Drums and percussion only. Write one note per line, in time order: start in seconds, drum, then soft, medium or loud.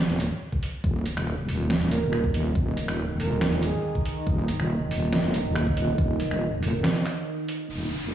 0.10 closed hi-hat soft
0.20 closed hi-hat medium
0.52 kick medium
0.63 closed hi-hat medium
0.84 kick loud
1.06 closed hi-hat medium
1.17 finger snap medium
1.49 open hi-hat medium
1.70 snare loud
1.81 closed hi-hat soft
1.91 closed hi-hat medium
2.13 finger snap medium
2.24 kick medium
2.34 closed hi-hat medium
2.55 kick loud
2.77 closed hi-hat medium
2.88 finger snap medium
3.20 open hi-hat medium
3.41 snare loud
3.53 closed hi-hat soft
3.63 closed hi-hat medium
3.95 kick medium
4.05 closed hi-hat medium
4.27 kick loud
4.48 closed hi-hat medium
4.60 finger snap medium
4.91 open hi-hat medium
5.13 snare loud
5.24 closed hi-hat soft
5.34 closed hi-hat medium
5.55 finger snap medium
5.67 kick medium
5.77 closed hi-hat medium
5.98 kick loud
6.20 closed hi-hat medium
6.31 finger snap medium
6.63 open hi-hat medium
6.84 snare loud
6.95 closed hi-hat soft
7.06 finger snap medium
7.06 closed hi-hat medium
7.49 closed hi-hat medium